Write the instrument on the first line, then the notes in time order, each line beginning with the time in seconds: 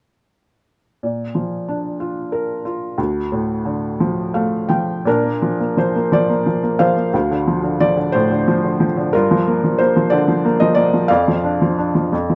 felt piano
1.03 A#2
1.35 F3
1.68 D4
2.00 F4
2.32 A#4
2.65 F4
2.98 D2
3.32 A2
3.65 D3
4.00 F3
4.34 A3 F5
4.69 F3 G5
5.05 A#2 D4 A#4
5.24 A#3
5.42 F3
5.60 A#3
5.77 F3 C5
5.95 A#3
6.12 F3 D5
6.29 A#3
6.46 F3
6.63 A#3
6.79 F3 C5 F5
6.96 A#3
7.13 D2
7.31 D3
7.47 F3
7.63 D3
7.80 F3 D5
7.97 D3
8.12 A2 C5
8.31 D3
8.48 F3
8.64 D3
8.80 F3
8.97 D3
9.13 G2 F4 A#4
9.31 F3
9.47 A#3
9.64 F3
9.78 A#3 C5
9.96 F3
10.10 D3 D5
10.28 F3
10.45 A#3
10.60 F3 D#5
10.74 A#3 D5
10.93 F3
11.08 F2 D5 F5
11.28 F3
11.44 D4
11.61 F3
11.78 D4
11.95 F3
12.12 F2
12.29 F3